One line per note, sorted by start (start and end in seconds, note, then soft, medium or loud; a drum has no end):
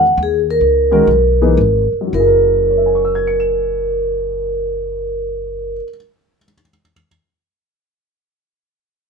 0.00 0.17 E2 loud
0.00 0.18 F#5 loud
0.17 0.60 D#2 medium
0.23 0.34 G#4 medium
0.51 1.91 A#4 medium
0.61 1.06 C#2 medium
0.91 1.06 D#3 medium
0.91 1.07 G#3 medium
0.91 1.07 C#4 medium
0.91 1.07 F#4 medium
0.91 1.07 A#4 medium
1.07 1.56 B1 medium
1.41 1.57 E3 medium
1.41 1.57 A#3 medium
1.41 1.57 D#4 medium
1.41 1.57 G#4 medium
1.41 1.57 B4 medium
1.57 1.90 G#1 medium
1.93 muted upright bass stroke soft
2.01 5.71 F#2 medium
2.07 5.77 F#3 medium
2.13 5.78 F#1 medium
2.13 5.83 E4 medium
2.13 5.80 A#4 medium
2.20 5.89 G#4 soft
2.26 5.96 A#4 medium
2.70 6.36 C#5 soft
2.77 6.43 E5 soft
2.86 6.52 G#5 soft
2.95 6.61 C#6 soft
3.05 6.70 E6 soft
3.15 6.81 G#6 soft
3.27 6.93 C#7 soft
3.40 7.05 E7 soft